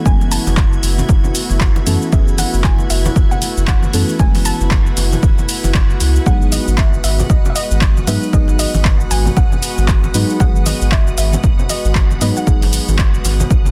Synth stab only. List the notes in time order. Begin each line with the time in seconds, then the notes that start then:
0.05 E3 G#3 A3 B3 C#4
1.86 E3 A3 B3 C#4 A4
2.12 E3 A3 B3 C#4 G#4
3.93 E3 A3 B3 C#4 A4
4.19 E3 G#3 A3 B3 C#4
6.26 F#3 G#3 B3 D#4 G#4
8.07 F#3 G#3 B3 D#4 B4
8.33 F#3 G#3 B3 D#4 G#4
10.14 F#3 G#3 B3 D#4 B4
10.40 D#3 F#3 G#3 B3 G#4
12.21 F#3 G#3 B3 D#4 B4
12.46 F#3 G#3 B3 D#4 G#4